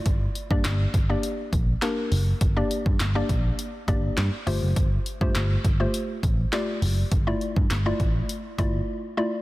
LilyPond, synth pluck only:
\new Staff \with { instrumentName = "Synth pluck" } { \time 4/4 \key g \dorian \tempo 4 = 102 r8. <bes d' g' d''>8. r16 <bes d' g' d''>4 r16 <bes d' g' bes'>4 | r16 <bes d' g' d''>8. r16 <bes d' g' d''>4 r16 <bes d' g' d''>8. r16 <a f' g' c''>8~ | <a f' g' c''>8 r16 <a f' g' c''>8. r16 <a f' g' c''>4 r16 <a f' g' d''>4 | r16 <a e' f' d''>8. r16 <a e' f' d''>4 r16 <a e' f' d''>8. r16 <a e' f' d''>8 | }